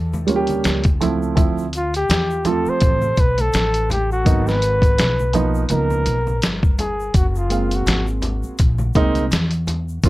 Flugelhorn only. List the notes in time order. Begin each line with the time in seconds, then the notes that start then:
1.76 F4
1.96 G4
2.47 A4
2.69 C5
3.20 B4
3.41 A4
3.92 G4
4.12 F#4
4.48 B4
5.71 A#4
6.80 G#4
7.16 F#4
7.29 F#4
7.38 F4
7.75 F#4